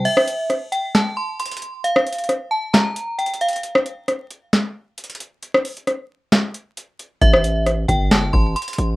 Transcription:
0.05 synth bell E5, closed hi-hat, crash
0.17 cross-stick
0.28 closed hi-hat
0.50 cross-stick, closed hi-hat
0.72 synth bell G5, closed hi-hat
0.95 synth bell A5, snare, closed hi-hat
1.17 synth bell C6
1.39 synth bell C6, closed hi-hat
1.45 closed hi-hat
1.51 closed hi-hat
1.57 closed hi-hat
1.62 closed hi-hat
1.84 synth bell F5, closed hi-hat
1.96 cross-stick
2.07 closed hi-hat
2.13 closed hi-hat
2.19 closed hi-hat
2.24 closed hi-hat
2.29 cross-stick, closed hi-hat
2.51 synth bell A5
2.73 synth bell A#5, snare, closed hi-hat
2.96 closed hi-hat
3.19 synth bell G5, closed hi-hat
3.26 closed hi-hat
3.34 closed hi-hat
3.41 synth bell F5, closed hi-hat
3.48 closed hi-hat
3.53 closed hi-hat
3.56 closed hi-hat
3.63 closed hi-hat
3.75 cross-stick
3.86 closed hi-hat
4.08 cross-stick, closed hi-hat
4.31 closed hi-hat
4.53 snare, closed hi-hat
4.98 closed hi-hat
5.04 closed hi-hat
5.10 closed hi-hat
5.15 closed hi-hat
5.20 closed hi-hat
5.43 closed hi-hat
5.54 cross-stick
5.65 closed hi-hat, open hi-hat
5.77 closed hi-hat
5.87 cross-stick, closed hi-hat
6.32 snare, closed hi-hat
6.54 closed hi-hat
6.77 closed hi-hat
6.99 closed hi-hat
7.21 808-style bass A1, synth bell E5, kick, closed hi-hat
7.33 cross-stick
7.44 closed hi-hat
7.66 cross-stick, closed hi-hat
7.88 808-style bass G1, synth bell G5, kick, closed hi-hat
8.11 synth bell A5, snare, closed hi-hat
8.33 808-style bass A1, synth bell C6, kick
8.56 synth bell C6, closed hi-hat
8.62 closed hi-hat
8.68 closed hi-hat
8.73 closed hi-hat
8.78 808-style bass A1, closed hi-hat

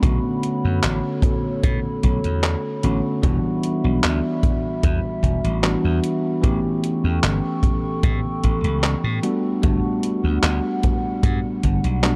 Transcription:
Already playing: ambient pad B5
0.02 slap bass B1, tine electric piano D3 A3 B3 C#4 F#4, ambient pad A4 C#5, kick, closed hi-hat
0.43 closed hi-hat
0.65 slap bass F#2
0.83 slap bass A1, clap, closed hi-hat
1.22 kick, closed hi-hat
1.63 slap bass B2, kick, closed hi-hat
2.03 slap bass B1, kick, closed hi-hat
2.24 slap bass E2, closed hi-hat
2.43 clap, closed hi-hat
2.83 slap bass A1, tine electric piano D3 A3 B3 C#4 F#4, closed hi-hat
3.22 slap bass E1, tine electric piano E3 G3 B3 D4 F#4, ambient pad G3 E5, kick, closed hi-hat
3.63 closed hi-hat
3.84 slap bass B1
4.04 slap bass D2, clap, closed hi-hat
4.43 kick, closed hi-hat
4.83 slap bass E2, kick, closed hi-hat
5.23 slap bass E1, kick, closed hi-hat
5.44 slap bass A1, closed hi-hat
5.63 tine electric piano E3 G3 B3 D4 F#4, clap, closed hi-hat
5.84 slap bass E2
6.04 closed hi-hat
6.42 slap bass A1, tine electric piano E3 A3 B3 C#4 G4, ambient pad A4 G5 C#6, kick, closed hi-hat
6.84 closed hi-hat
7.04 slap bass E2
7.23 slap bass G1, clap, closed hi-hat
7.63 kick, closed hi-hat
8.03 slap bass A2, kick, closed hi-hat
8.44 slap bass A1, kick, closed hi-hat
8.64 slap bass C#2, closed hi-hat
8.83 clap, closed hi-hat
9.04 slap bass A2
9.23 tine electric piano G3 A3 B3 D4 F#4, ambient pad G3 F#5, closed hi-hat
9.62 slap bass G1, tine electric piano G3 A3 B3 D4 F#4, kick, closed hi-hat
10.03 closed hi-hat
10.24 slap bass D2
10.43 slap bass D2, clap, closed hi-hat
10.83 kick, closed hi-hat
11.23 slap bass G2, kick, closed hi-hat
11.63 slap bass G1, kick, closed hi-hat
11.84 slap bass B1, closed hi-hat
12.03 tine electric piano G3 A3 B3 D4 F#4, clap, closed hi-hat

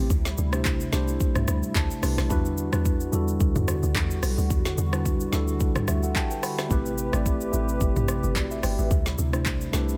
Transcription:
Already playing: analog synth pad C3, tine electric piano A3 C4 E4 G4 B4 C5
0.10 log drum bass D2, analog synth pad G3 E4, kick, shaker
0.25 snare, shaker
0.38 log drum bass D2, shaker
0.51 tine electric piano A3 D4 E4 G4 C5, cross-stick, shaker
0.65 kick, clap, shaker
0.80 shaker
0.91 log drum bass C2, tine electric piano A3 D4 E4 G4 C5, snare, shaker
1.08 shaker
1.20 kick, shaker
1.35 log drum bass C2, cross-stick, mid tom, shaker
1.48 log drum bass D2, cross-stick, shaker
1.63 shaker
1.75 log drum bass D2, tine electric piano A5, kick, clap, shaker
1.91 shaker
2.01 log drum bass C2, tine electric piano A3 D4 E4 G4 B4, cross-stick, open hi-hat, shaker
2.18 log drum bass B1, cross-stick, snare, shaker
2.29 log drum bass E2, analog synth pad D3 F#4, tine electric piano G3 D4 E4 F#4 B4, kick, shaker
2.45 shaker
2.58 shaker
2.71 log drum bass E2, tine electric piano G3 D4 E4 F#4 B4, cross-stick, shaker
2.85 kick, shaker
3.00 shaker
3.11 log drum bass E2, tine electric piano G3 D4 E4 F#4 A4, shaker
3.28 shaker
3.40 log drum bass D2, kick, shaker
3.56 log drum bass E2, mid tom, shaker
3.68 cross-stick, shaker
3.83 log drum bass D2, shaker
3.95 log drum bass E2, kick, clap, shaker
4.11 shaker
4.23 log drum bass B1, cross-stick, open hi-hat, shaker
4.38 log drum bass D2, shaker
4.50 log drum bass E2, kick, shaker
4.65 snare, shaker
4.78 log drum bass E2, shaker
4.91 tine electric piano G3 D4 E4 F#4 B4, cross-stick, shaker
5.05 kick, shaker
5.20 shaker
5.31 log drum bass D2, tine electric piano G3 D4 E4 F#4 A4, snare, shaker
5.48 shaker
5.60 kick, shaker
5.76 cross-stick, mid tom, shaker
5.88 log drum bass D2, tine electric piano G4 E5, cross-stick, shaker
6.03 tine electric piano A4 F#5, shaker
6.16 tine electric piano G5 A5, kick, clap, shaker
6.31 tine electric piano B4 G5, shaker
6.43 tine electric piano A4 F#5 B5, cross-stick, open hi-hat, shaker
6.58 tine electric piano G4 E5, cross-stick, snare, shaker
6.69 log drum bass A1, analog synth pad C3 G4 B4, tine electric piano A3 C4 E4 G4 B4, kick, shaker
6.86 shaker
6.98 shaker
7.12 log drum bass A1, tine electric piano A3 C4 E4 G4 D5, cross-stick, shaker
7.26 kick, shaker
7.41 shaker
7.52 log drum bass A1, tine electric piano A3 C4 E4 G4 B4, shaker
7.68 shaker
7.81 log drum bass G1, kick, shaker
7.96 log drum bass A1, mid tom, shaker
8.08 cross-stick, shaker
8.23 log drum bass G1, shaker
8.36 log drum bass A1, tine electric piano F#4 D5, kick, clap, shaker
8.51 tine electric piano G4 E5, shaker
8.63 log drum bass G1, tine electric piano B4 G5, cross-stick, open hi-hat, shaker
8.79 log drum bass A1, tine electric piano G4 E5, shaker
8.91 log drum bass D2, analog synth pad G3 E4, kick, shaker
9.06 snare, shaker
9.18 log drum bass D2, shaker
9.32 tine electric piano A3 D4 E4 G4 C5, cross-stick, shaker
9.46 kick, clap, shaker
9.61 shaker
9.72 log drum bass C2, tine electric piano A3 D4 E4 G4 B4, snare, shaker
9.89 shaker

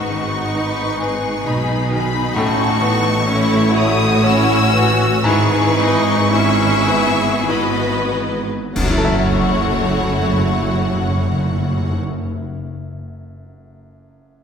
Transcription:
Already playing: double bass section G#1, cello section G#2, grand piano G#2, viola section D#4, violin section F#4 B4 C#6
0.10 grand piano D#3
0.56 grand piano D#4, violin section B4
1.01 violin section G#4, grand piano B4
1.46 double bass section B1, cello section B2, grand piano D#4, viola section D#4, violin section B5
1.91 grand piano D#3, violin section B5
2.35 double bass section A1, cello section A2, grand piano A2, viola section C#4, violin section F#4 A4 C#6
2.81 grand piano E3, viola section B3
3.26 viola section A3 E4, grand piano C#4, violin section E4 C#5
3.73 violin section F#4 D#6, grand piano C#5
4.22 viola section C#4 E4, grand piano C#4, violin section E6
4.72 grand piano E3, viola section F#4
5.23 double bass section G#1, grand piano G#2, cello section G#2, viola section E4, violin section G#4 B4 C#6
5.77 grand piano E3, viola section D#4
6.31 viola section C#4 E4, grand piano E4, violin section G#4 E5
6.88 viola section B3, grand piano B4
7.48 viola section B3 F#4, grand piano E4, violin section B4 D#5 B5
8.12 grand piano E3
8.75 double bass section F#1, timpani F#2, cello section F#2, grand piano F#2, viola section A3 E4, violin section F#4 C#5 F#5, concert bass drum, crash
8.82 timpani F#2, grand piano F#3
8.89 timpani F#2, grand piano E4
8.96 timpani F#2, grand piano A4
9.03 timpani F#2, grand piano E5
9.11 timpani F#2
9.18 timpani F#2
9.24 timpani F#2
9.31 timpani F#2
9.37 timpani F#2
9.44 timpani F#2
9.50 timpani F#2
9.57 timpani F#2
9.64 timpani F#2
9.71 timpani F#2
9.78 timpani F#2
9.85 timpani F#2
9.92 timpani F#2
9.99 timpani F#2
10.05 timpani F#2
10.12 timpani F#2
10.18 timpani F#2
10.26 timpani F#2
10.33 timpani F#2
10.39 timpani F#2
10.47 timpani F#2
10.54 timpani F#2
10.61 timpani F#2
10.68 timpani F#2
10.74 timpani F#2
10.81 timpani F#2
10.88 timpani F#2
10.95 timpani F#2
11.02 timpani F#2
11.08 timpani F#2
11.15 timpani F#2
11.21 timpani F#2
11.28 timpani F#2
11.36 timpani F#2
11.43 timpani F#2
11.50 timpani F#2
11.57 timpani F#2
11.64 timpani F#2
11.71 timpani F#2
11.77 timpani F#2
11.83 timpani F#2
11.90 timpani F#2

